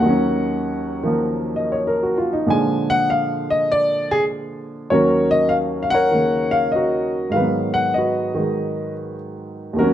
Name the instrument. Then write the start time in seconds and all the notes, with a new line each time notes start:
upright piano
Already playing: F#5
0.00 D#2 D#3
0.06 F#3 C#4
1.03 D#3 F3 A#3
1.56 D#5
1.72 C#5
1.87 A#4
2.03 F#4
2.18 F4
2.33 D#4
2.46 A#2 D3 F3 G#3
2.50 G#5
2.90 F#5
3.10 F5
3.50 D#5
3.72 D5
4.11 G#4
4.90 D#2 D#3 F#3 C#4 F#4 A#4 C#5
5.31 D#5
5.49 F5
5.83 F5
5.90 A#4 F#5
5.94 C#5
6.11 C#3 D#3 A#3
6.51 F5
6.72 F#4 D#5
6.76 A#4
7.29 G#2 D#3 F5
7.36 F#3 B4
7.40 B3
7.74 F#5
7.94 F#4 D#5
7.98 B4
8.35 D#3 G#3
9.73 D#2 D#3
9.79 F#3 C#4 F#4 A#4
9.84 C#4